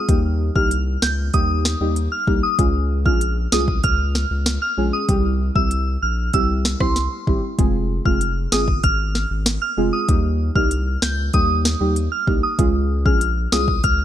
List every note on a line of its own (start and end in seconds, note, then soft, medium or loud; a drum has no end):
0.09 0.51 D#2 loud
0.09 0.52 G3 medium
0.09 0.52 A#3 medium
0.09 0.52 D#4 medium
0.09 0.52 G4 loud
0.09 kick loud
0.09 closed hi-hat medium
0.55 0.97 C2 medium
0.55 0.69 G3 medium
0.55 0.70 A#3 medium
0.55 0.70 D#4 medium
0.55 0.70 G4 medium
0.55 0.81 F6 medium
0.55 kick medium
0.71 closed hi-hat medium
1.02 1.30 C#2 medium
1.02 1.28 G6 medium
1.02 snare loud
1.34 1.76 D#2 loud
1.34 1.77 G3 medium
1.34 1.77 A#3 medium
1.34 1.77 D#4 medium
1.34 1.77 G4 loud
1.34 1.78 D#6 loud
1.34 kick medium
1.34 closed hi-hat medium
1.65 snare loud
1.80 2.08 D#2 medium
1.80 1.94 G3 medium
1.80 1.95 A#3 medium
1.80 1.95 D#4 medium
1.80 1.95 G4 medium
1.96 closed hi-hat medium
2.12 2.25 F6 medium
2.27 2.41 C2 loud
2.27 2.41 G3 medium
2.27 2.41 A#3 medium
2.27 2.42 D#4 medium
2.27 2.42 G4 medium
2.27 kick loud
2.43 2.56 D#6 medium
2.58 3.07 C#2 loud
2.58 3.02 G#3 loud
2.58 3.02 C#4 medium
2.58 3.02 F4 medium
2.58 3.02 G#4 loud
2.58 kick loud
2.58 closed hi-hat medium
3.05 3.47 A#1 loud
3.05 3.19 G#3 medium
3.05 3.19 C#4 medium
3.05 3.20 F4 medium
3.05 3.20 G#4 medium
3.05 3.31 F6 medium
3.05 kick loud
3.21 closed hi-hat medium
3.52 3.80 C2 medium
3.52 3.66 G#3 medium
3.52 3.66 C#4 medium
3.52 3.67 F4 medium
3.52 3.67 G#4 medium
3.52 3.78 D#6 medium
3.52 snare loud
3.68 kick medium
3.84 4.26 C#2 loud
3.84 4.28 F6 loud
3.84 kick loud
3.84 closed hi-hat medium
4.15 snare medium
4.31 4.58 C#2 medium
4.46 snare loud
4.46 closed hi-hat medium
4.62 4.75 F6 medium
4.77 4.91 A#1 loud
4.77 5.06 G#3 medium
4.77 5.06 C#4 medium
4.77 5.06 F4 medium
4.77 5.06 G#4 medium
4.93 5.06 D#6 medium
5.08 5.51 C2 loud
5.08 5.52 G3 medium
5.08 5.52 C4 medium
5.08 5.52 E4 medium
5.08 5.52 G4 loud
5.08 kick loud
5.08 closed hi-hat medium
5.55 5.97 C2 medium
5.55 5.69 G3 medium
5.55 5.70 C4 medium
5.55 5.70 E4 medium
5.55 5.70 G4 medium
5.55 5.81 E6 medium
5.55 kick loud
5.71 closed hi-hat medium
6.02 6.30 A#1 medium
6.02 6.28 F6 medium
6.33 6.76 C2 medium
6.33 6.77 G3 medium
6.33 6.77 C4 medium
6.33 6.77 E4 medium
6.33 6.77 G4 loud
6.33 6.47 E6 medium
6.33 kick medium
6.33 closed hi-hat medium
6.65 snare loud
6.80 7.08 C2 medium
6.80 6.94 G3 medium
6.80 6.95 C4 medium
6.80 6.95 E4 medium
6.80 6.95 G4 medium
6.80 6.93 C6 medium
6.80 kick loud
6.80 cross-stick loud
6.96 snare medium
6.96 closed hi-hat medium
7.27 7.41 G#1 loud
7.27 7.41 G3 medium
7.27 7.41 C4 medium
7.27 7.42 E4 medium
7.27 7.42 G4 medium
7.27 kick loud
7.58 8.01 F1 loud
7.58 8.02 G#3 medium
7.58 8.02 C4 medium
7.58 8.02 F4 medium
7.58 8.02 G#4 loud
7.58 kick loud
7.58 closed hi-hat medium
8.05 8.47 F1 loud
8.05 8.19 G#3 medium
8.05 8.19 C4 medium
8.05 8.20 F4 medium
8.05 8.20 G#4 medium
8.05 8.31 F6 medium
8.05 kick loud
8.21 closed hi-hat medium
8.52 8.80 G1 medium
8.52 8.66 G#3 medium
8.52 8.66 C4 medium
8.52 8.66 F4 medium
8.52 8.67 G#4 medium
8.52 8.78 D#6 medium
8.52 snare loud
8.68 kick medium
8.83 9.26 G#1 loud
8.83 9.28 F6 loud
8.83 kick loud
8.83 closed hi-hat medium
9.15 snare medium
9.30 9.58 G#1 loud
9.46 snare loud
9.46 closed hi-hat medium
9.62 9.75 F6 medium
9.77 9.91 F1 loud
9.77 10.06 G#3 medium
9.77 10.06 C4 medium
9.77 10.06 F4 medium
9.77 10.06 G#4 medium
9.93 10.06 D#6 medium
10.08 10.51 D#2 loud
10.08 10.52 G3 loud
10.08 10.52 A#3 medium
10.08 10.52 D#4 medium
10.08 10.52 G4 loud
10.08 kick loud
10.08 closed hi-hat medium
10.55 10.97 C2 medium
10.55 10.69 G3 medium
10.55 10.70 A#3 medium
10.55 10.70 D#4 medium
10.55 10.70 G4 medium
10.55 10.81 F6 medium
10.55 kick loud
10.71 closed hi-hat medium
11.02 11.30 C#2 medium
11.02 11.28 G6 medium
11.02 snare loud
11.33 11.76 D#2 loud
11.33 11.77 G3 medium
11.33 11.77 A#3 medium
11.33 11.77 D#4 medium
11.33 11.77 G4 loud
11.33 11.78 D#6 loud
11.33 kick loud
11.33 closed hi-hat medium
11.65 snare loud
11.80 12.08 D#2 medium
11.80 11.94 G3 medium
11.80 11.94 A#3 medium
11.80 11.95 D#4 medium
11.80 11.95 G4 medium
11.96 closed hi-hat medium
12.12 12.25 F6 medium
12.27 12.41 C2 loud
12.27 12.41 G3 medium
12.27 12.41 A#3 medium
12.27 12.41 D#4 medium
12.27 12.42 G4 medium
12.27 kick loud
12.43 12.56 D#6 medium
12.58 13.07 C#2 loud
12.58 13.02 G#3 medium
12.58 13.02 C#4 medium
12.58 13.02 F4 medium
12.58 13.02 G#4 loud
12.58 kick loud
12.58 closed hi-hat medium
13.05 13.47 A#1 medium
13.05 13.19 G#3 medium
13.05 13.20 C#4 medium
13.05 13.20 F4 medium
13.05 13.20 G#4 medium
13.05 13.31 F6 medium
13.05 kick loud
13.21 closed hi-hat medium
13.52 13.80 C2 medium
13.52 13.66 G#3 medium
13.52 13.66 C#4 medium
13.52 13.66 F4 medium
13.52 13.67 G#4 medium
13.52 13.78 D#6 medium
13.52 snare loud
13.68 kick medium
13.84 14.05 C#2 loud
13.84 14.05 F6 loud
13.84 kick loud
13.84 closed hi-hat medium